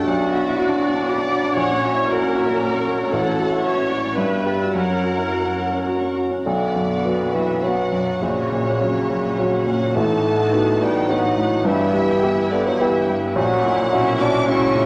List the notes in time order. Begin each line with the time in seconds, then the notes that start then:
Already playing: D4 A4
0.06 B1 B2 F#3 F#4 D5 F#5
0.19 D4 F#5
0.31 F#4 E5 B5
0.45 E4 D6
0.57 F#4 D5 B5
0.68 D4 F#5
0.82 F#4 D5
0.94 D4 F#5
1.06 F#4 D5 F#5 B5
1.18 D4 D6
1.31 F#4 B5
1.44 D4 F#5
1.56 A#1 A#2 C#5 F#5
1.70 C#4 F#5
1.83 F#4 E5 A#5
1.95 E4 C#6
2.08 F#4 A#4 F#5 A#5
2.22 C#4 F#5
2.35 F#4 C#5 E5
2.48 C#4 F#5
2.60 F#4 D5 A#5
2.74 C#4 C#6
2.87 F#4 C#5 A#5
2.99 C#4 F#5
3.11 A1 A2 F#3 A4 C#5 F#5
3.25 C#4 F#5
3.38 F#4 A5
3.52 E4 C#6
3.64 F#3 F#4 C#5 E5 A5
3.78 C#4 F#5
3.89 F#4 C#5 D5
4.05 C#4 F#5
4.16 G2 G3 B4 E5
4.31 B3 G5
4.45 G4 D5 B5
4.60 F#4 E6
4.73 F#2 F#3 A#4 C#5 F#5
4.90 C#4 F#5
5.03 F#4 A#5
5.17 E4 C#6
5.31 F#4 A#5
5.45 C#4 F#5
5.58 F#4 C#5
5.73 C#4 F#5
5.86 F#4 A#5
6.00 C#4 C#6
6.14 F#4 A#5
6.29 C#4 F#5
6.43 B1 B2 D3 B3 F#4 D5 F#5
6.59 B4
6.74 F#2 D5
6.90 F#5
7.04 F#3 B3 F#4 D5
7.19 B4
7.33 E3 F#3 F#4 E5
7.48 B4
7.62 F#3 B3 F#4 D5 F#5
7.77 F#5
7.92 F#2 D5
8.05 B4
8.21 A#1 A#2 C#3 C#4 F#4 C#5
8.35 A#4
8.50 A#2 C#5
8.64 F#5
8.79 F#3 C#4 F#4 C#5
8.94 A#4
9.08 F#3 F#4
9.24 A#4
9.38 F#3 C#4 F#4 C#5
9.53 F#5
9.66 A#2 F#3 C#5 F#5
9.82 A#4
9.95 A1 A2 A3 B3 D#4 F#4 F#5 A5
10.09 A4
10.23 A2 B4
10.37 D#5
10.52 B3 D#4 F#4 B4
10.67 A4
10.79 G3 B3 F#4 G5
10.94 A4
11.09 F#3 B3 D#4 F#4 B4 F#5
11.23 D#5
11.36 A2 B4
11.51 A4
11.65 G1 G2 E3 E4 G4 E5
11.80 B4
11.93 G3 E5
12.09 G5
12.23 B3 E4 G4 E5
12.39 B4
12.51 D3 B3 G4 D5
12.65 F#3 B4 F#5
12.80 E3 B3 E4 G4 E5
12.97 G5
13.09 G3 E5
13.25 B4
13.35 A#1 A#2 F#3 C#4 F#4 A#4 C#5 F#5
13.65 A#2 E4
13.93 B1 B2 C#4 E4 F#4 E5
14.21 C#4 D4 F#4 D6
14.48 C#2 C#3 C#4 E4 F#4 E5 C#6
14.75 A#2 E4